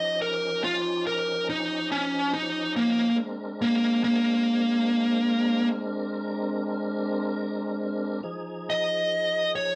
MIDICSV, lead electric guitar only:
0, 0, Header, 1, 2, 480
1, 0, Start_track
1, 0, Tempo, 848656
1, 1783, Time_signature, 12, 3, 24, 8
1, 5515, End_track
2, 0, Start_track
2, 0, Title_t, "Lead electric guitar"
2, 0, Program_c, 0, 29
2, 0, Note_on_c, 0, 75, 69
2, 104, Note_off_c, 0, 75, 0
2, 123, Note_on_c, 0, 70, 73
2, 346, Note_off_c, 0, 70, 0
2, 362, Note_on_c, 0, 65, 79
2, 585, Note_off_c, 0, 65, 0
2, 604, Note_on_c, 0, 70, 74
2, 826, Note_off_c, 0, 70, 0
2, 846, Note_on_c, 0, 63, 84
2, 1067, Note_off_c, 0, 63, 0
2, 1083, Note_on_c, 0, 61, 86
2, 1306, Note_off_c, 0, 61, 0
2, 1321, Note_on_c, 0, 63, 72
2, 1545, Note_off_c, 0, 63, 0
2, 1563, Note_on_c, 0, 58, 82
2, 1786, Note_off_c, 0, 58, 0
2, 2046, Note_on_c, 0, 58, 84
2, 2268, Note_off_c, 0, 58, 0
2, 2285, Note_on_c, 0, 58, 99
2, 3211, Note_off_c, 0, 58, 0
2, 4920, Note_on_c, 0, 75, 96
2, 5377, Note_off_c, 0, 75, 0
2, 5404, Note_on_c, 0, 73, 79
2, 5515, Note_off_c, 0, 73, 0
2, 5515, End_track
0, 0, End_of_file